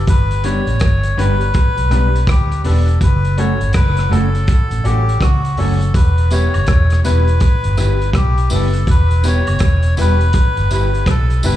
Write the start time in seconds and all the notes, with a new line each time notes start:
0.07 G1 B4, kick, closed hi-hat
0.31 closed hi-hat
0.44 G3 B3 D4 G4 B4 C#5, closed hi-hat
0.67 A1, closed hi-hat
0.79 G1, kick, cross-stick, closed hi-hat
1.03 closed hi-hat
1.17 G1 G3 B3 D4 G4 B4, closed hi-hat
1.41 closed hi-hat
1.54 kick, closed hi-hat
1.76 B1, muted clean electric guitar stroke, closed hi-hat
1.89 B1 G3 B3 D4 G4 B4, cross-stick, closed hi-hat
2.15 closed hi-hat
2.27 D2 G4, kick, cross-stick, closed hi-hat
2.51 closed hi-hat
2.63 E1 G3 B3 D4 G4 A4 B4, open hi-hat
2.88 closed hi-hat
3.01 F#1 B4, kick, closed hi-hat
3.25 closed hi-hat
3.37 F#3 A3 C#4 F#4 A4 C#5, closed hi-hat
3.61 G1, closed hi-hat
3.73 F#1 B4, kick, cross-stick, closed hi-hat
3.97 cross-stick, closed hi-hat
4.09 F#1 F#3 A3 C#4 F#4 A4, closed hi-hat
4.35 closed hi-hat
4.47 kick, closed hi-hat
4.71 A1, muted clean electric guitar stroke, closed hi-hat
4.84 A1 F#3 A3 C#4 F#4 G4 A4, closed hi-hat
5.09 closed hi-hat
5.21 C#2 F#4, kick, cross-stick, closed hi-hat
5.45 closed hi-hat
5.57 F#1 F#3 A3 C#4 F#4 A4, open hi-hat
5.81 closed hi-hat
5.94 E1 B4, kick, closed hi-hat
6.18 closed hi-hat
6.30 G3 B3 E4 G4 B4 C#5, closed hi-hat, tambourine
6.54 F#1, closed hi-hat, high woodblock
6.66 E1, kick, cross-stick, closed hi-hat
6.90 cross-stick, closed hi-hat
7.04 E1 G3 B3 E4 G4 B4, closed hi-hat, tambourine
7.28 closed hi-hat
7.40 kick, closed hi-hat
7.64 G1, muted clean electric guitar stroke, closed hi-hat
7.77 G1 G3 B3 E4 G4 B4, cross-stick, closed hi-hat, tambourine
8.01 closed hi-hat
8.13 B1 G4, kick, cross-stick, closed hi-hat
8.37 closed hi-hat
8.49 F#1 G3 B3 E4 G4 B4, open hi-hat, tambourine
8.54 A4
8.73 closed hi-hat
8.87 E1 B4, kick, closed hi-hat
9.11 closed hi-hat
9.22 G3 B3 E4 G4 B4, closed hi-hat, tambourine
9.27 C#5
9.47 F#1, closed hi-hat, high woodblock
9.59 E1, kick, cross-stick, closed hi-hat
9.82 closed hi-hat
9.97 E1 G3 B3 E4 G4 B4, closed hi-hat, tambourine
10.20 closed hi-hat
10.33 kick, closed hi-hat
10.57 G1, muted clean electric guitar stroke, closed hi-hat
10.70 G1 G3 B3 E4 G4 B4, closed hi-hat, tambourine
10.94 closed hi-hat
11.06 B1 A4, kick, cross-stick, closed hi-hat
11.30 closed hi-hat
11.43 F#1 G3 B3 E4 G4 B4, open hi-hat, tambourine